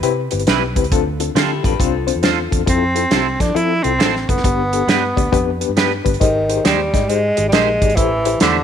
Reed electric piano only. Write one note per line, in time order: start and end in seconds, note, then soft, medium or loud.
0.03 0.20 C4 loud
0.03 0.20 E4 loud
0.03 0.20 G4 loud
0.03 0.20 B4 loud
0.32 0.41 C4 medium
0.32 0.41 E4 medium
0.32 0.41 G4 medium
0.32 0.41 B4 medium
0.47 0.64 C4 medium
0.47 0.64 E4 medium
0.47 0.64 G4 medium
0.47 0.64 B4 medium
0.76 0.85 C4 medium
0.76 0.85 E4 medium
0.76 0.85 G4 medium
0.76 0.85 B4 medium
0.92 1.60 D3 medium
0.92 1.08 C4 loud
0.92 1.08 D4 medium
0.92 1.08 F4 loud
0.92 1.08 A4 loud
1.20 1.29 C4 medium
1.20 1.29 D4 medium
1.20 1.29 F4 medium
1.20 1.29 A4 medium
1.36 1.52 C4 medium
1.36 1.52 D4 medium
1.36 1.52 F4 medium
1.36 1.52 A4 medium
1.63 1.72 C4 medium
1.63 1.73 D4 medium
1.63 1.72 F4 medium
1.63 1.73 A4 medium
1.79 1.96 C4 loud
1.79 1.96 D4 loud
1.79 1.96 F4 loud
1.79 1.96 C5 loud
2.07 2.17 C4 medium
2.07 2.17 D4 medium
2.07 2.17 F4 medium
2.07 2.17 C5 medium
2.23 2.40 C4 medium
2.23 2.40 D4 medium
2.23 2.40 F4 medium
2.23 2.40 C5 medium
2.51 2.61 C4 medium
2.51 2.61 D4 medium
2.51 2.61 F4 medium
2.51 2.61 A4 medium
2.66 2.84 C4 medium
2.66 2.84 E4 medium
2.66 2.84 F4 medium
2.66 2.84 A4 loud
2.95 3.04 C4 medium
2.95 3.05 E4 medium
2.95 3.05 F4 medium
2.95 3.05 A4 medium
3.10 3.28 C4 medium
3.10 3.28 E4 medium
3.10 3.28 F4 medium
3.10 3.28 G4 medium
3.40 3.49 C4 medium
3.40 3.49 E4 medium
3.40 3.49 F4 medium
3.40 3.49 A4 medium
3.55 3.72 C4 medium
3.55 3.72 E4 medium
3.55 3.72 F4 medium
3.55 3.72 A4 loud
3.84 3.93 C4 medium
3.84 3.94 E4 medium
3.84 3.93 F4 medium
3.84 3.93 A4 medium
4.00 4.17 C4 medium
4.00 4.17 E4 medium
4.00 4.17 F4 medium
4.00 4.17 A4 medium
4.29 4.38 C4 medium
4.29 4.38 E4 medium
4.29 4.38 F4 medium
4.29 4.38 A4 medium
4.45 5.13 G2 medium
4.45 4.61 B3 medium
4.45 4.61 D4 medium
4.45 4.62 G4 medium
4.45 4.61 B4 loud
4.73 4.82 B3 medium
4.73 4.82 D4 medium
4.73 4.82 G4 medium
4.73 4.82 A4 medium
4.88 5.05 B3 medium
4.88 5.05 D4 medium
4.88 5.05 G4 medium
4.88 5.05 B4 medium
5.17 5.26 B3 medium
5.17 5.26 D4 medium
5.17 5.26 G4 medium
5.17 5.26 D5 medium
5.32 5.49 B3 loud
5.32 5.49 D4 loud
5.32 5.49 G4 loud
5.32 5.49 B4 loud
5.61 5.70 B3 medium
5.61 5.70 D4 medium
5.61 5.70 G4 medium
5.61 5.70 B4 medium
5.76 5.93 B3 medium
5.76 5.93 D4 medium
5.76 5.93 G4 medium
5.76 5.93 B4 medium
6.04 6.14 B3 medium
6.04 6.14 D4 medium
6.04 6.14 G4 medium
6.04 6.14 B4 medium
6.20 6.89 G#2 medium
6.20 6.37 D#4 medium
6.20 6.37 G4 medium
6.20 6.38 G#4 medium
6.20 6.37 C5 loud
6.49 6.58 D#4 medium
6.49 6.58 G4 medium
6.49 6.58 G#4 medium
6.49 6.59 C5 loud
6.64 6.81 D#4 medium
6.64 6.81 G4 medium
6.64 6.81 G#4 medium
6.64 6.81 C5 medium
6.93 7.03 D#4 medium
6.93 7.03 G4 medium
6.93 7.02 G#4 medium
6.93 7.03 D#5 medium
7.09 7.26 D#4 medium
7.09 7.26 G4 medium
7.09 7.26 G#4 medium
7.09 7.26 C5 medium
7.37 7.47 D#4 medium
7.37 7.46 G4 medium
7.37 7.47 G#4 medium
7.37 7.47 D#5 medium
7.52 7.70 D#4 medium
7.52 7.70 G4 medium
7.52 7.70 G#4 medium
7.52 7.70 A#4 loud
7.81 7.90 D#4 medium
7.81 7.90 G4 medium
7.81 7.91 G#4 medium
7.81 7.90 D5 medium
7.97 8.64 A2 medium
7.97 8.14 E4 medium
7.97 8.14 G4 medium
7.97 8.14 A4 medium
7.97 8.14 C5 loud
8.26 8.35 E4 medium
8.26 8.35 G4 medium
8.26 8.35 A4 medium
8.26 8.35 C5 loud
8.41 8.58 E4 medium
8.41 8.58 G4 medium
8.41 8.58 A4 medium
8.41 8.58 C5 medium